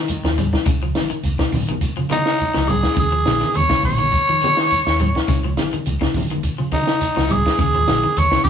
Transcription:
0.00 0.18 D#3 medium
0.00 0.34 D#3 loud
0.08 closed hi-hat medium
0.08 shekere medium
0.24 0.50 D#2 medium
0.24 0.34 F3 medium
0.24 snare medium
0.24 shekere soft
0.38 0.58 G3 medium
0.38 closed hi-hat medium
0.38 high conga medium
0.38 low conga medium
0.38 shekere medium
0.53 kick medium
0.53 snare medium
0.53 shekere soft
0.66 0.92 C#2 loud
0.66 0.78 C#3 medium
0.66 kick loud
0.66 closed hi-hat medium
0.66 shekere medium
0.83 1.03 F3 medium
0.83 shekere soft
0.95 1.10 G#1 medium
0.95 snare medium
0.95 closed hi-hat medium
0.95 high conga medium
0.95 shekere medium
1.10 1.31 D#3 medium
1.10 closed hi-hat medium
1.10 shekere soft
1.23 1.38 C#2 medium
1.23 closed hi-hat medium
1.23 shekere medium
1.39 1.60 C#3 medium
1.39 kick medium
1.39 snare medium
1.39 shekere soft
1.52 1.78 G#1 loud
1.52 kick medium
1.52 open hi-hat medium
1.52 high conga medium
1.52 low conga medium
1.52 shekere medium
1.68 1.89 D#3 medium
1.68 closed hi-hat medium
1.68 high conga medium
1.68 shekere soft
1.81 kick medium
1.81 closed hi-hat medium
1.81 shekere medium
1.97 2.50 C#3 medium
1.97 2.06 F3 medium
1.97 shekere soft
2.10 2.30 D#3 medium
2.10 2.70 D#4 loud
2.10 snare soft
2.10 closed hi-hat soft
2.10 high conga medium
2.10 shekere medium
2.26 snare medium
2.26 shekere soft
2.38 closed hi-hat medium
2.38 shekere medium
2.54 2.81 C#2 medium
2.54 2.64 F3 medium
2.54 snare medium
2.54 shekere soft
2.67 2.88 G3 medium
2.67 2.97 G#4 loud
2.67 closed hi-hat medium
2.67 high conga medium
2.67 low conga medium
2.67 shekere medium
2.83 kick medium
2.83 snare medium
2.83 shekere soft
2.95 3.23 D#2 loud
2.95 3.07 C#3 medium
2.95 kick loud
2.95 closed hi-hat medium
2.95 shekere medium
3.00 3.58 G#4 medium
3.12 3.33 F3 medium
3.12 shekere soft
3.26 3.40 A#1 medium
3.26 snare medium
3.26 closed hi-hat soft
3.26 high conga medium
3.26 shekere medium
3.41 3.61 D#3 medium
3.41 snare soft
3.41 high conga medium
3.41 shekere soft
3.54 3.70 D#2 medium
3.54 3.84 C#5 loud
3.54 closed hi-hat medium
3.54 high conga medium
3.54 shekere medium
3.70 3.90 C#3 medium
3.70 kick medium
3.70 snare medium
3.70 shekere soft
3.83 4.09 A#1 loud
3.83 5.53 C#5 loud
3.83 kick medium
3.83 open hi-hat medium
3.83 high conga medium
3.83 low conga medium
3.83 shekere medium
3.98 4.19 D#3 medium
3.98 high conga medium
3.98 shekere soft
4.12 kick medium
4.12 closed hi-hat medium
4.12 shekere medium
4.29 4.80 D#3 medium
4.29 4.38 F3 medium
4.29 shekere soft
4.41 4.62 D#3 medium
4.41 closed hi-hat soft
4.41 high conga loud
4.41 shekere medium
4.57 snare medium
4.57 shekere soft
4.71 closed hi-hat medium
4.71 shekere medium
4.87 5.12 D#2 medium
4.87 snare medium
4.87 shekere soft
4.99 5.20 G3 medium
4.99 closed hi-hat medium
4.99 high conga medium
4.99 low conga medium
4.99 shekere medium
5.15 kick medium
5.15 snare medium
5.15 shekere soft
5.28 5.54 C#2 loud
5.28 5.39 C#3 loud
5.28 kick loud
5.28 snare soft
5.28 closed hi-hat medium
5.28 shekere medium
5.44 5.64 F3 medium
5.44 shekere soft
5.57 5.71 G#1 medium
5.57 snare medium
5.57 closed hi-hat medium
5.57 high conga medium
5.57 shekere medium
5.73 5.93 D#3 medium
5.73 closed hi-hat medium
5.73 high conga medium
5.73 shekere soft
5.86 6.00 C#2 medium
5.86 closed hi-hat medium
5.86 high conga medium
5.86 shekere medium
6.01 6.21 C#3 medium
6.01 kick medium
6.01 snare medium
6.01 shekere soft
6.14 6.40 G#1 loud
6.14 kick medium
6.14 open hi-hat medium
6.14 high conga medium
6.14 low conga medium
6.14 shekere medium
6.30 6.51 D#3 medium
6.30 closed hi-hat medium
6.30 high conga medium
6.30 shekere soft
6.43 kick medium
6.43 closed hi-hat medium
6.43 shekere medium
6.58 7.10 C#3 medium
6.58 6.68 F3 medium
6.58 shekere soft
6.72 6.92 D#3 medium
6.72 7.34 D#4 medium
6.72 kick medium
6.72 closed hi-hat soft
6.72 high conga medium
6.72 shekere medium
6.87 snare medium
6.87 shekere soft
7.01 closed hi-hat medium
7.01 shekere medium
7.16 7.43 C#2 medium
7.16 7.25 F3 medium
7.16 snare medium
7.16 shekere soft
7.29 7.49 G3 medium
7.29 7.59 G#4 loud
7.29 closed hi-hat medium
7.29 high conga medium
7.29 low conga medium
7.29 shekere medium
7.46 kick medium
7.46 snare medium
7.46 shekere soft
7.59 7.84 D#2 loud
7.59 7.70 C#3 loud
7.59 8.20 G#4 medium
7.59 kick loud
7.59 closed hi-hat medium
7.59 shekere medium
7.75 7.95 F3 medium
7.75 low conga medium
7.75 shekere soft
7.87 8.01 A#1 medium
7.87 snare medium
7.87 closed hi-hat medium
7.87 high conga medium
7.87 shekere medium
8.04 8.23 D#3 medium
8.04 high conga medium
8.04 shekere soft
8.17 8.30 D#2 medium
8.17 8.43 C#5 loud
8.17 closed hi-hat medium
8.17 high conga medium
8.17 shekere medium
8.32 8.50 C#3 medium
8.32 kick medium
8.32 snare medium
8.32 shekere soft
8.44 8.50 A#1 loud
8.44 8.50 G#4 loud
8.44 kick medium
8.44 open hi-hat medium
8.44 high conga medium
8.44 low conga medium

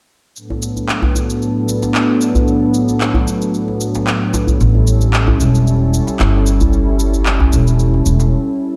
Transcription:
0.36 4.57 A2 medium
0.36 4.57 F#3 medium
0.36 4.57 B3 medium
0.36 4.57 D4 medium
0.36 4.57 A4 medium
0.36 shaker soft
0.50 djembe tone medium
0.62 shaker medium
0.76 djembe tone soft
0.76 shaker soft
0.89 clap medium
0.89 shaker soft
1.02 djembe slap soft
1.02 djembe bass medium
1.15 djembe tone medium
1.15 shaker medium
1.30 shaker soft
1.42 shaker soft
1.68 djembe slap soft
1.68 shaker medium
1.82 djembe slap soft
1.82 shaker soft
1.94 clap medium
1.94 djembe slap soft
1.94 shaker soft
2.21 shaker medium
2.35 djembe bass medium
2.35 shaker soft
2.48 shaker soft
2.74 shaker medium
2.88 djembe tone soft
2.88 shaker soft
3.01 clap medium
3.01 shaker soft
3.14 djembe slap soft
3.14 djembe bass medium
3.28 djembe tone medium
3.28 shaker medium
3.42 shaker soft
3.54 shaker soft
3.68 djembe slap soft
3.81 shaker medium
3.95 djembe slap medium
3.95 shaker soft
4.07 clap medium
4.07 shaker soft
4.34 djembe slap medium
4.34 djembe tone medium
4.34 shaker medium
4.47 djembe bass medium
4.47 shaker soft
4.59 5.33 A1 medium
4.59 8.76 G3 medium
4.59 8.76 C#4 medium
4.59 8.76 E4 medium
4.59 8.76 A4 medium
4.59 shaker soft
4.75 djembe tone medium
4.87 shaker medium
5.01 djembe tone soft
5.01 shaker soft
5.13 clap medium
5.13 shaker soft
5.27 djembe slap soft
5.27 djembe bass medium
5.39 5.99 E1 medium
5.39 djembe tone medium
5.39 shaker medium
5.55 shaker soft
5.67 shaker soft
5.93 djembe slap soft
5.93 shaker medium
6.07 djembe slap medium
6.07 shaker soft
6.20 7.45 G1 medium
6.20 clap medium
6.20 djembe slap soft
6.20 shaker soft
6.46 shaker medium
6.60 djembe bass medium
6.60 shaker soft
6.73 shaker soft
6.99 shaker medium
7.14 djembe tone soft
7.14 shaker soft
7.26 clap medium
7.26 shaker soft
7.40 djembe slap soft
7.40 djembe bass medium
7.53 7.99 E1 medium
7.53 djembe tone medium
7.53 shaker medium
7.67 shaker soft
7.79 shaker soft
7.94 djembe slap soft
8.06 8.32 E1 medium
8.06 shaker medium
8.20 djembe slap medium
8.20 shaker soft

